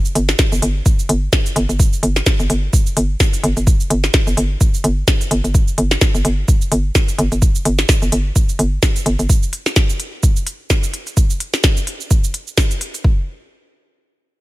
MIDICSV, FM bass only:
0, 0, Header, 1, 2, 480
1, 0, Start_track
1, 0, Tempo, 468750
1, 1838, Time_signature, 4, 2, 24, 8
1, 14754, End_track
2, 0, Start_track
2, 0, Title_t, "FM bass"
2, 0, Program_c, 0, 39
2, 157, Note_on_c, 0, 31, 104
2, 353, Note_off_c, 0, 31, 0
2, 534, Note_on_c, 0, 31, 90
2, 616, Note_off_c, 0, 31, 0
2, 638, Note_on_c, 0, 31, 100
2, 834, Note_off_c, 0, 31, 0
2, 1118, Note_on_c, 0, 31, 106
2, 1314, Note_off_c, 0, 31, 0
2, 1596, Note_on_c, 0, 31, 111
2, 1704, Note_off_c, 0, 31, 0
2, 1733, Note_on_c, 0, 31, 86
2, 1915, Note_off_c, 0, 31, 0
2, 2077, Note_on_c, 0, 31, 104
2, 2273, Note_off_c, 0, 31, 0
2, 2454, Note_on_c, 0, 31, 86
2, 2536, Note_off_c, 0, 31, 0
2, 2558, Note_on_c, 0, 31, 102
2, 2754, Note_off_c, 0, 31, 0
2, 3038, Note_on_c, 0, 31, 101
2, 3234, Note_off_c, 0, 31, 0
2, 3517, Note_on_c, 0, 31, 109
2, 3625, Note_off_c, 0, 31, 0
2, 3654, Note_on_c, 0, 31, 82
2, 3836, Note_off_c, 0, 31, 0
2, 3997, Note_on_c, 0, 31, 104
2, 4193, Note_off_c, 0, 31, 0
2, 4372, Note_on_c, 0, 31, 87
2, 4455, Note_off_c, 0, 31, 0
2, 4477, Note_on_c, 0, 31, 103
2, 4673, Note_off_c, 0, 31, 0
2, 4956, Note_on_c, 0, 31, 107
2, 5153, Note_off_c, 0, 31, 0
2, 5437, Note_on_c, 0, 31, 107
2, 5545, Note_off_c, 0, 31, 0
2, 5573, Note_on_c, 0, 31, 82
2, 5756, Note_off_c, 0, 31, 0
2, 5917, Note_on_c, 0, 31, 103
2, 6113, Note_off_c, 0, 31, 0
2, 6293, Note_on_c, 0, 31, 88
2, 6375, Note_off_c, 0, 31, 0
2, 6397, Note_on_c, 0, 31, 106
2, 6594, Note_off_c, 0, 31, 0
2, 6877, Note_on_c, 0, 31, 106
2, 7073, Note_off_c, 0, 31, 0
2, 7357, Note_on_c, 0, 31, 112
2, 7465, Note_off_c, 0, 31, 0
2, 7494, Note_on_c, 0, 31, 86
2, 7676, Note_off_c, 0, 31, 0
2, 7838, Note_on_c, 0, 31, 106
2, 8034, Note_off_c, 0, 31, 0
2, 8214, Note_on_c, 0, 31, 86
2, 8296, Note_off_c, 0, 31, 0
2, 8317, Note_on_c, 0, 31, 98
2, 8513, Note_off_c, 0, 31, 0
2, 8797, Note_on_c, 0, 31, 101
2, 8993, Note_off_c, 0, 31, 0
2, 9276, Note_on_c, 0, 31, 104
2, 9384, Note_off_c, 0, 31, 0
2, 9413, Note_on_c, 0, 31, 88
2, 9495, Note_off_c, 0, 31, 0
2, 14754, End_track
0, 0, End_of_file